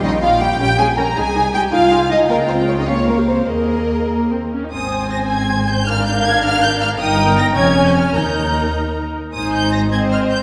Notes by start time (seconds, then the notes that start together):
0.02 A#1 G3 C#4 D#4 D#5 G5
0.22 G3 C#4 F4 F5
0.40 G3 C#4 G4 G5
0.59 A#1 G3 C#4 G4 G5
0.78 G3 C#4 G#4 G#5
0.97 G3 C#4 A#4 A#5
1.16 C2 G#3 D#4 G#4 G#5
1.35 G#3 D#4
1.54 G#3 D#4 G4 G5
1.71 C2 G#3 D#4 F4 F5 G#5
1.91 G#3 D#4
2.10 G#3 D#4 D#5
2.29 C#2 G#3 A#3 F4 A#4 G5
2.49 C4 C5
2.68 C#4 C#5
2.78 D#4 D#5
2.87 A#3 C#4 F4 C#5 F5
3.08 A#3 A#4
3.17 G4
3.28 C4 C5
3.47 D#2 A#3 G#4 A#4 D#5
4.09 A#3
4.31 C4
4.52 C#4
4.63 D#4
4.72 G#1 G#2 C4 C5 G#5 D#6
5.11 A#6
5.30 G#6
5.67 G6
5.87 D4 A#4 F5 F6
6.06 G6
6.25 G#6
6.44 F6
6.64 G6
6.82 F6
6.99 G1 G2 D#4 A#4 G5 D#6
7.37 A#6
7.56 F1 F2 C#4 C#5 G#5 G#6
7.87 G6
7.95 F6
8.15 D#2 D#4 A#4 A#5 G6
9.33 G#1 G#2 D#4 C5 G#5 D#6
9.54 G6
9.73 A#6
9.91 C4 C5 D#5 G#6
10.12 F6
10.30 G6